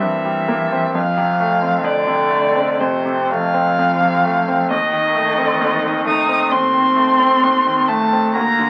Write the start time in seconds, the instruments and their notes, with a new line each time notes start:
Already playing: grand piano G3 A#3 C4
0.00 grand piano G2, cello E3, violin E5
0.25 grand piano G3
0.48 grand piano A#3
0.72 grand piano C4
0.94 grand piano F2, cello F3, violin F5
1.17 grand piano C3
1.40 grand piano A3
1.62 grand piano C4
1.84 grand piano F2, cello D3, violin D5
2.07 grand piano C3
2.31 grand piano A3
2.55 grand piano C4
2.80 grand piano F2, cello C3, violin C5
3.06 grand piano C3
3.31 cello F3, grand piano A3, violin F5
3.54 grand piano C4
3.79 grand piano F2
4.01 grand piano C3
4.24 grand piano A3
4.48 grand piano C4
4.70 grand piano D#2, cello D#3, violin D#5
4.93 grand piano D#3
5.15 grand piano A3
5.38 grand piano C4
5.61 grand piano D#2
5.84 grand piano D#3
6.06 grand piano A3, cello D#4, violin D#6
6.29 grand piano C4
6.51 grand piano D#2, cello C4, violin C6
6.74 grand piano D#3
6.96 grand piano A3
7.20 grand piano C4
7.43 grand piano D#2
7.66 grand piano D#3
7.88 grand piano A3, cello A3, violin A5
8.13 grand piano C4
8.35 grand piano D2, cello A#3, violin A#5
8.59 grand piano D3